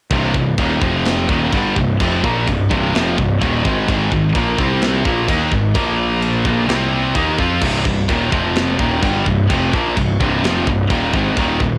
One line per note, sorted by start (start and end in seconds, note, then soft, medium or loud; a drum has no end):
0.10 0.33 C1 medium
0.10 0.34 C2 medium
0.10 0.34 G2 loud
0.10 0.34 C3 loud
0.10 kick loud
0.10 china medium
0.34 0.56 C1 medium
0.34 0.54 C2 medium
0.34 0.54 G2 medium
0.34 kick medium
0.58 0.80 D#1 loud
0.58 0.82 D#2 loud
0.58 0.82 A#2 medium
0.58 0.83 D#3 loud
0.58 kick loud
0.58 china medium
0.81 1.25 F1 medium
0.81 1.28 F2 medium
0.81 1.29 C3 loud
0.81 1.29 F3 loud
0.81 kick loud
1.05 snare loud
1.05 china medium
1.28 1.51 D#1 medium
1.28 1.52 D#2 loud
1.28 1.52 A#2 loud
1.28 1.52 D#3 loud
1.28 kick loud
1.52 1.74 G1 medium
1.52 1.75 G2 loud
1.52 1.76 D3 loud
1.52 1.76 G3 loud
1.52 kick loud
1.52 china medium
1.76 1.98 C1 medium
1.76 1.95 C2 medium
1.76 1.95 G2 medium
1.76 kick medium
2.00 2.22 F1 loud
2.00 2.23 F2 loud
2.00 2.23 C3 loud
2.00 2.22 F3 loud
2.00 kick loud
2.00 china medium
2.23 2.45 A#1 medium
2.23 2.46 A#2 medium
2.23 2.46 F3 medium
2.23 2.46 A#3 loud
2.23 kick loud
2.47 2.69 C1 medium
2.47 2.65 C2 medium
2.47 2.66 G2 medium
2.47 kick medium
2.47 china medium
2.70 2.92 C1 medium
2.70 2.93 C2 loud
2.70 2.93 G2 loud
2.70 2.93 C3 loud
2.70 kick loud
2.94 3.16 F1 medium
2.94 3.16 F2 loud
2.94 3.17 C3 loud
2.94 3.17 F3 loud
2.94 snare loud
2.94 china medium
3.17 3.39 C1 medium
3.17 3.36 C2 medium
3.17 3.36 G2 medium
3.17 kick loud
3.41 3.63 D#1 loud
3.41 3.64 D#2 loud
3.41 3.64 A#2 loud
3.41 3.64 D#3 loud
3.41 kick loud
3.41 china medium
3.65 3.86 G#1 loud
3.65 3.87 G#2 loud
3.65 3.87 D#3 loud
3.65 3.88 G#3 loud
3.65 kick loud
3.88 4.10 G#1 medium
3.88 4.11 G#2 loud
3.88 4.11 D#3 loud
3.88 4.11 G#3 loud
3.88 kick loud
3.88 china medium
4.11 4.33 G#1 medium
4.11 4.30 G#2 medium
4.11 4.31 D#3 medium
4.11 kick medium
4.35 4.57 A#1 loud
4.35 4.58 A#2 medium
4.35 4.58 F3 loud
4.35 4.58 A#3 medium
4.35 kick loud
4.35 china medium
4.58 5.02 C2 medium
4.58 5.04 C3 loud
4.58 5.04 G3 loud
4.58 5.04 C4 loud
4.58 kick loud
4.82 snare loud
4.82 china medium
5.05 5.27 A#1 medium
5.05 5.28 A#2 loud
5.05 5.28 F3 loud
5.05 5.28 A#3 loud
5.05 kick loud
5.28 5.50 D#2 medium
5.28 5.51 D#3 medium
5.28 5.51 A#3 loud
5.28 5.51 D#4 loud
5.28 kick loud
5.28 china medium
5.52 5.74 G#1 medium
5.52 5.70 G#2 medium
5.52 5.70 D#3 medium
5.52 kick medium
5.75 6.41 A#1 medium
5.75 6.44 A#2 medium
5.75 6.44 F3 loud
5.75 6.45 A#3 loud
5.75 kick loud
5.75 china medium
6.22 china medium
6.45 6.67 A#1 medium
6.45 6.68 A#2 loud
6.45 6.68 F3 medium
6.45 6.68 A#3 loud
6.45 kick loud
6.68 7.12 C2 medium
6.68 7.14 C3 medium
6.68 7.15 G3 loud
6.68 7.15 C4 loud
6.68 snare loud
6.68 china medium
7.15 7.37 D#2 medium
7.15 7.38 D#3 loud
7.15 7.38 A#3 medium
7.15 7.38 D#4 medium
7.15 kick loud
7.15 china medium
7.38 7.61 F2 medium
7.38 7.61 F3 loud
7.38 7.61 C4 medium
7.38 7.61 F4 loud
7.38 kick medium
7.61 7.84 C1 medium
7.61 7.84 C2 medium
7.61 7.85 G2 loud
7.61 7.85 C3 loud
7.61 kick loud
7.61 crash loud
7.61 china medium
7.85 8.07 C1 medium
7.85 8.04 C2 medium
7.85 8.04 G2 medium
7.85 kick loud
8.09 8.31 D#1 loud
8.09 8.31 D#2 medium
8.09 8.31 A#2 medium
8.09 8.32 D#3 medium
8.09 kick loud
8.09 china medium
8.31 8.76 F1 medium
8.31 8.78 F2 medium
8.31 8.78 C3 loud
8.31 8.78 F3 loud
8.31 kick loud
8.56 snare loud
8.56 china medium
8.78 9.01 D#1 medium
8.78 9.01 D#2 loud
8.78 9.02 A#2 loud
8.78 9.02 D#3 loud
8.78 kick loud
9.02 9.24 G1 loud
9.02 9.25 G2 medium
9.02 9.25 D3 loud
9.02 9.25 G3 loud
9.02 kick loud
9.02 china medium
9.26 9.48 C1 medium
9.26 9.44 C2 medium
9.26 9.45 G2 medium
9.26 kick medium
9.49 9.71 F1 medium
9.49 9.72 F2 medium
9.49 9.72 C3 loud
9.49 9.72 F3 loud
9.49 kick loud
9.49 china medium
9.73 9.95 A#1 medium
9.73 9.95 A#2 medium
9.73 9.95 F3 medium
9.73 9.96 A#3 medium
9.73 kick loud
9.97 10.18 C1 medium
9.97 10.15 C2 medium
9.97 10.15 G2 medium
9.97 kick loud
9.97 china medium
10.20 10.42 C1 medium
10.20 10.42 C2 medium
10.20 10.43 G2 medium
10.20 10.43 C3 loud
10.20 kick loud
10.43 10.65 F1 loud
10.43 10.66 F2 loud
10.43 10.66 C3 loud
10.43 10.66 F3 loud
10.43 snare loud
10.43 china medium
10.67 10.89 C1 medium
10.67 10.85 C2 medium
10.67 10.85 G2 medium
10.67 kick loud
10.90 11.11 D#1 loud
10.90 11.11 D#2 medium
10.90 11.12 A#2 loud
10.90 11.11 D#3 loud
10.90 kick loud
10.90 china medium
11.12 11.35 G#1 loud
11.12 11.35 G#2 loud
11.12 11.35 D#3 loud
11.12 11.35 G#3 loud
11.12 kick loud
11.36 11.58 D#1 medium
11.36 11.59 D#2 loud
11.36 11.59 A#2 loud
11.36 11.59 D#3 loud
11.36 kick loud
11.36 china medium
11.60 11.78 D#1 medium
11.60 11.78 D#2 medium
11.60 11.78 A#2 medium
11.60 kick medium